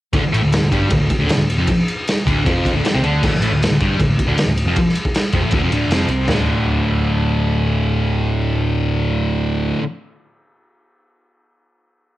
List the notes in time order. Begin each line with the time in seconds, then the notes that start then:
0.13 D1 D2 D3, kick, ride
0.22 muted picked electric bass stroke, muted distorted electric guitar stroke
0.32 A1 A2 A3, ride
0.42 D1 D2
0.52 snare, ride
0.61 D1 D2
0.71 G1 G2 G3, kick, ride
0.90 D1 D2, kick, ride
0.99 D1 D2
1.09 muted distorted electric guitar stroke, muted picked electric bass stroke, kick, ride
1.19 D1 D2 D3
1.27 muted distorted electric guitar stroke, snare, ride
1.33 muted picked electric bass stroke
1.37 D1 D2
1.50 ride
1.57 F1 F2 F3
1.67 kick, ride
1.88 ride
2.08 snare, ride
2.26 D1 D2 D3, kick, ride
2.45 F1 F2 F3, kick, ride
2.65 kick, ride
2.74 D1 D2 D3
2.84 muted distorted electric guitar stroke, muted picked electric bass stroke, snare, ride
2.94 C2 C3 C4
3.01 D2 D3 D4, ride
3.22 D1 D2 D3, kick, crash
3.31 muted picked electric bass stroke, muted distorted electric guitar stroke, snare
3.40 A1 A2 A3, ride
3.50 D1 D2
3.63 snare, ride
3.70 D1 D2
3.80 G1 G2 G3, kick, ride
3.98 D1 D2, kick, ride
4.08 D1 D2
4.17 muted distorted electric guitar stroke, muted picked electric bass stroke, kick, ride
4.27 D1 D2 D3
4.36 muted picked electric bass stroke, muted distorted electric guitar stroke, snare, ride
4.46 D1 D2
4.57 ride
4.64 F1 F2 F3
4.76 kick, ride
4.89 snare
4.95 ride
5.05 kick
5.14 snare, ride
5.32 F1 F2 F3, kick, ride
5.42 A1 A2 A3
5.51 D1 D2 D3, kick, ride
5.62 F1 F2 F3
5.71 D1 D2 D3, ride
5.88 F1, snare, ride
5.92 F2 F3
6.07 C2 C3, ride
6.12 C4
6.27 D1 D2 A2, snare, floor tom, crash
6.33 D3